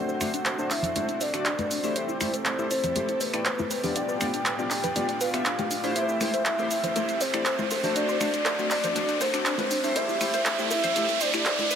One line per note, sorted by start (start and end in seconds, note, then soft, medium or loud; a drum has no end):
0.00 0.18 A3 loud
0.00 3.92 A3 medium
0.00 3.92 C4 medium
0.00 0.18 D4 medium
0.00 1.94 D4 medium
0.00 0.18 F#4 medium
0.00 1.94 F#4 medium
0.00 0.18 C5 loud
0.00 1.92 C5 medium
0.00 0.72 F#5 loud
0.00 riser medium
0.09 0.17 C5 medium
0.09 shaker soft
0.21 0.32 A3 medium
0.21 0.30 D4 medium
0.21 0.32 D4 medium
0.21 0.32 F#4 medium
0.21 0.32 C5 loud
0.21 finger snap medium
0.21 open hi-hat loud
0.21 high conga medium
0.21 shaker medium
0.34 0.42 D4 medium
0.34 closed hi-hat medium
0.34 shaker soft
0.46 0.55 C5 medium
0.46 clap loud
0.46 closed hi-hat medium
0.46 shaker soft
0.59 0.69 A3 medium
0.59 0.67 D4 medium
0.59 0.69 D4 medium
0.59 0.69 F#4 medium
0.59 0.69 C5 loud
0.59 shaker soft
0.70 0.80 D4 medium
0.70 1.23 E5 loud
0.70 clap medium
0.70 open hi-hat loud
0.70 shaker medium
0.82 0.92 C5 loud
0.82 closed hi-hat medium
0.82 low conga loud
0.82 shaker soft
0.96 1.06 A3 medium
0.96 1.06 D4 medium
0.96 1.05 D4 medium
0.96 1.06 F#4 medium
0.96 1.06 C5 medium
0.96 closed hi-hat medium
0.96 high conga medium
0.96 shaker soft
1.09 1.17 D4 medium
1.09 closed hi-hat soft
1.09 shaker soft
1.21 1.30 C5 medium
1.21 1.98 D5 loud
1.21 open hi-hat loud
1.21 shaker medium
1.34 1.44 A3 medium
1.34 1.44 D4 medium
1.34 1.42 D4 medium
1.34 1.44 F#4 medium
1.34 1.44 D5 loud
1.34 finger snap medium
1.34 closed hi-hat medium
1.34 shaker soft
1.45 1.55 D4 medium
1.45 clap loud
1.45 closed hi-hat medium
1.45 shaker soft
1.59 1.67 B4 loud
1.59 closed hi-hat soft
1.59 high conga medium
1.59 shaker soft
1.71 1.80 D4 medium
1.71 open hi-hat loud
1.71 shaker medium
1.84 2.18 A3 loud
1.84 1.92 D4 medium
1.84 2.18 E4 medium
1.84 2.18 G4 medium
1.84 2.18 C5 loud
1.84 open hi-hat medium
1.84 shaker soft
1.96 3.94 E4 medium
1.96 5.92 G4 medium
1.96 3.94 A4 medium
1.96 2.05 C5 medium
1.96 2.70 C5 loud
1.96 closed hi-hat medium
1.96 shaker soft
2.09 2.17 E4 medium
2.09 shaker soft
2.21 2.32 A3 loud
2.21 2.30 E4 medium
2.21 2.32 E4 medium
2.21 2.32 G4 medium
2.21 2.32 C5 loud
2.21 finger snap medium
2.21 open hi-hat loud
2.21 high conga medium
2.21 shaker medium
2.34 2.42 C5 medium
2.34 closed hi-hat medium
2.34 shaker soft
2.45 2.55 E4 medium
2.45 clap loud
2.45 closed hi-hat medium
2.45 shaker soft
2.59 2.69 A3 medium
2.59 2.67 E4 medium
2.59 2.69 E4 medium
2.59 2.69 G4 medium
2.59 2.69 C5 medium
2.59 shaker soft
2.71 2.80 E4 medium
2.71 3.22 C5 loud
2.71 open hi-hat loud
2.71 shaker medium
2.84 2.92 C5 loud
2.84 closed hi-hat soft
2.84 low conga medium
2.84 shaker soft
2.96 3.06 A3 medium
2.96 3.05 E4 medium
2.96 3.06 E4 medium
2.96 3.06 G4 medium
2.96 3.07 C5 medium
2.96 closed hi-hat medium
2.96 high conga medium
2.96 shaker soft
3.09 3.17 E4 medium
3.09 closed hi-hat soft
3.09 shaker soft
3.21 3.97 B4 loud
3.21 3.30 C5 medium
3.21 open hi-hat loud
3.21 shaker medium
3.34 3.44 A3 loud
3.34 3.44 E4 medium
3.34 3.42 E4 medium
3.34 3.44 G4 medium
3.34 3.44 D5 loud
3.34 finger snap medium
3.34 closed hi-hat medium
3.34 shaker soft
3.45 3.55 C5 medium
3.45 clap loud
3.45 closed hi-hat medium
3.45 shaker soft
3.59 3.67 E4 medium
3.59 high conga loud
3.59 shaker soft
3.71 3.80 B4 medium
3.71 open hi-hat loud
3.71 shaker medium
3.84 4.18 B3 medium
3.84 3.92 D4 medium
3.84 4.18 F4 medium
3.84 4.18 G4 medium
3.84 4.18 D5 loud
3.84 open hi-hat medium
3.84 low conga loud
3.84 shaker soft
3.96 5.94 A2 medium
3.96 5.94 B3 medium
3.96 4.05 D4 medium
3.96 5.94 D4 medium
3.96 5.94 F4 medium
3.96 5.94 D5 medium
3.96 4.70 G5 loud
3.96 closed hi-hat medium
3.96 shaker soft
4.09 4.17 B4 medium
4.09 shaker soft
4.21 4.31 B3 medium
4.21 4.30 D4 medium
4.21 4.31 F4 medium
4.21 4.31 G4 medium
4.21 4.31 D5 loud
4.21 finger snap medium
4.21 open hi-hat loud
4.21 high conga medium
4.21 shaker medium
4.34 4.42 D4 medium
4.34 closed hi-hat soft
4.34 shaker soft
4.46 4.55 B4 loud
4.46 clap loud
4.46 closed hi-hat medium
4.46 shaker soft
4.59 4.69 B3 medium
4.59 4.67 D4 medium
4.59 4.69 F4 medium
4.59 4.69 G4 medium
4.59 4.69 D5 loud
4.59 shaker soft
4.70 4.80 D4 medium
4.70 5.22 G5 loud
4.70 clap medium
4.70 open hi-hat loud
4.70 shaker medium
4.84 4.92 B4 loud
4.84 closed hi-hat soft
4.84 low conga medium
4.84 shaker soft
4.96 5.06 B3 medium
4.96 5.05 D4 medium
4.96 5.06 F4 medium
4.96 5.06 G4 medium
4.96 5.06 D5 medium
4.96 closed hi-hat medium
4.96 high conga medium
4.96 shaker soft
5.09 5.17 D4 medium
5.09 closed hi-hat soft
5.09 shaker soft
5.21 5.30 B4 loud
5.21 5.98 F5 loud
5.21 open hi-hat loud
5.21 shaker medium
5.34 5.44 B3 loud
5.34 5.42 D4 medium
5.34 5.44 F4 medium
5.34 5.44 G4 medium
5.34 5.44 E5 loud
5.34 finger snap medium
5.34 closed hi-hat soft
5.34 shaker soft
5.46 5.55 D4 medium
5.46 clap loud
5.46 closed hi-hat medium
5.46 shaker soft
5.59 5.67 G4 medium
5.59 closed hi-hat soft
5.59 high conga medium
5.59 shaker soft
5.71 5.80 D4 medium
5.71 open hi-hat loud
5.71 shaker medium
5.84 6.18 A3 loud
5.84 5.92 D4 medium
5.84 6.18 E4 medium
5.84 6.18 G4 medium
5.84 6.18 C5 loud
5.84 open hi-hat medium
5.84 shaker soft
5.96 7.94 A3 medium
5.96 7.94 C4 medium
5.96 7.94 E4 medium
5.96 7.94 G4 medium
5.96 11.75 C5 medium
5.96 6.05 C5 loud
5.96 6.70 E5 loud
5.96 closed hi-hat medium
5.96 shaker soft
6.09 6.17 E4 medium
6.09 shaker soft
6.21 6.31 A3 loud
6.21 6.31 E4 medium
6.21 6.30 E4 medium
6.21 6.31 G4 medium
6.21 6.31 C5 loud
6.21 finger snap medium
6.21 open hi-hat loud
6.21 high bongo medium
6.21 high conga medium
6.21 shaker medium
6.34 6.42 C5 loud
6.34 closed hi-hat medium
6.34 shaker soft
6.46 6.55 E4 medium
6.46 clap loud
6.46 closed hi-hat medium
6.46 shaker soft
6.59 6.69 A3 medium
6.59 6.69 E4 medium
6.59 6.67 E4 medium
6.59 6.69 G4 medium
6.59 6.69 C5 loud
6.59 high bongo soft
6.59 shaker soft
6.71 6.80 E4 medium
6.71 7.22 E5 loud
6.71 open hi-hat loud
6.71 shaker medium
6.83 6.92 C5 loud
6.83 closed hi-hat soft
6.83 low conga loud
6.83 shaker soft
6.96 7.06 A3 medium
6.96 7.06 E4 medium
6.96 7.05 E4 medium
6.96 7.06 G4 medium
6.96 7.06 C5 medium
6.96 closed hi-hat medium
6.96 high bongo medium
6.96 high conga medium
6.96 shaker soft
7.09 7.17 E4 medium
7.09 closed hi-hat soft
7.09 shaker soft
7.21 7.30 C5 medium
7.21 7.95 C5 loud
7.21 open hi-hat loud
7.21 shaker medium
7.34 7.44 A3 loud
7.34 7.44 E4 medium
7.34 7.42 E4 medium
7.34 7.44 G4 medium
7.34 7.44 D5 loud
7.34 finger snap medium
7.34 closed hi-hat medium
7.34 high bongo soft
7.34 shaker soft
7.45 7.55 C5 medium
7.45 clap loud
7.45 closed hi-hat medium
7.45 shaker soft
7.59 7.67 E4 medium
7.59 high conga loud
7.59 shaker soft
7.71 7.80 C5 medium
7.71 open hi-hat loud
7.71 high bongo medium
7.71 shaker medium
7.83 8.18 A3 loud
7.83 8.18 D4 medium
7.83 7.92 D4 medium
7.83 8.18 F#4 medium
7.83 8.18 C5 loud
7.83 open hi-hat medium
7.83 low conga medium
7.83 shaker soft
7.96 11.75 A3 medium
7.96 11.75 C4 medium
7.96 9.94 D4 medium
7.96 8.05 D4 medium
7.96 9.94 F#4 medium
7.96 8.67 D5 loud
7.96 closed hi-hat medium
7.96 shaker soft
8.08 8.17 C5 medium
8.08 high bongo soft
8.08 shaker soft
8.20 8.31 A3 loud
8.20 8.31 D4 medium
8.20 8.30 D4 medium
8.20 8.31 F#4 medium
8.20 8.31 C5 loud
8.20 finger snap medium
8.20 open hi-hat loud
8.20 high conga medium
8.20 shaker medium
8.34 8.42 D4 medium
8.34 closed hi-hat medium
8.34 shaker soft
8.45 8.55 C5 medium
8.45 clap loud
8.45 closed hi-hat medium
8.45 high bongo medium
8.45 shaker soft
8.59 8.69 A3 medium
8.59 8.69 D4 medium
8.59 8.67 D4 medium
8.59 8.69 F#4 medium
8.59 8.69 C5 loud
8.59 shaker soft
8.70 8.80 D4 medium
8.70 9.23 D5 loud
8.70 clap medium
8.70 open hi-hat loud
8.70 shaker medium
8.83 8.92 C5 loud
8.83 closed hi-hat medium
8.83 high bongo soft
8.83 low conga medium
8.83 shaker soft
8.95 9.07 A3 medium
8.95 9.05 D4 medium
8.95 9.07 D4 medium
8.95 9.07 F#4 medium
8.95 9.07 C5 medium
8.95 closed hi-hat medium
8.95 high conga medium
8.95 shaker soft
9.09 9.17 D4 medium
9.09 closed hi-hat soft
9.09 shaker soft
9.21 9.30 C5 medium
9.21 9.98 C5 loud
9.21 open hi-hat loud
9.21 high bongo medium
9.21 shaker medium
9.34 9.44 A3 loud
9.34 9.44 D4 medium
9.34 9.42 D4 medium
9.34 9.44 F#4 medium
9.34 9.44 D5 loud
9.34 finger snap medium
9.34 closed hi-hat medium
9.34 shaker soft
9.46 9.55 D4 medium
9.46 clap loud
9.46 closed hi-hat medium
9.46 shaker soft
9.58 9.67 B4 loud
9.58 closed hi-hat soft
9.58 high bongo soft
9.58 high conga loud
9.58 shaker soft
9.71 9.80 D4 medium
9.71 open hi-hat loud
9.71 shaker medium
9.84 10.18 A3 medium
9.84 9.92 D4 medium
9.84 10.18 E4 medium
9.84 10.18 G4 medium
9.84 10.18 C5 loud
9.84 open hi-hat medium
9.84 shaker soft
9.96 11.75 E4 medium
9.96 11.75 G4 medium
9.96 10.05 C5 medium
9.96 10.70 E5 loud
9.96 closed hi-hat medium
9.96 high bongo medium
9.96 shaker soft
10.09 10.17 E4 medium
10.09 shaker soft
10.21 10.32 A3 loud
10.21 10.30 E4 medium
10.21 10.32 E4 medium
10.21 10.32 G4 medium
10.21 10.31 C5 loud
10.21 finger snap medium
10.21 open hi-hat medium
10.21 high conga medium
10.21 shaker medium
10.34 10.42 C5 loud
10.34 closed hi-hat medium
10.34 high bongo soft
10.34 shaker soft
10.45 10.55 E4 medium
10.45 clap loud
10.45 closed hi-hat medium
10.45 shaker soft
10.59 10.69 A3 medium
10.59 10.67 E4 medium
10.59 10.69 E4 medium
10.59 10.69 G4 medium
10.59 10.69 C5 loud
10.59 shaker soft
10.71 10.80 E4 medium
10.71 11.23 E5 loud
10.71 open hi-hat loud
10.71 high bongo medium
10.71 shaker medium
10.84 10.92 C5 loud
10.84 closed hi-hat medium
10.84 low conga medium
10.84 shaker soft
10.96 11.07 A3 medium
10.96 11.05 E4 medium
10.96 11.07 E4 medium
10.96 11.07 G4 medium
10.96 11.07 C5 medium
10.96 closed hi-hat medium
10.96 high conga medium
10.96 shaker soft
11.09 11.17 E4 medium
11.09 closed hi-hat soft
11.09 high bongo soft
11.09 shaker soft
11.21 11.30 C5 medium
11.21 11.75 D5 loud
11.21 open hi-hat loud
11.21 shaker medium
11.34 11.44 A3 loud
11.34 11.44 E4 medium
11.34 11.42 E4 medium
11.34 11.44 G4 medium
11.34 11.44 D5 loud
11.34 finger snap medium
11.34 closed hi-hat medium
11.34 shaker soft
11.45 11.55 C5 medium
11.45 clap loud
11.45 closed hi-hat medium
11.45 high bongo medium
11.45 shaker soft
11.59 11.67 E4 medium
11.59 high conga medium
11.59 shaker soft
11.71 11.75 B4 medium
11.71 open hi-hat loud
11.71 shaker medium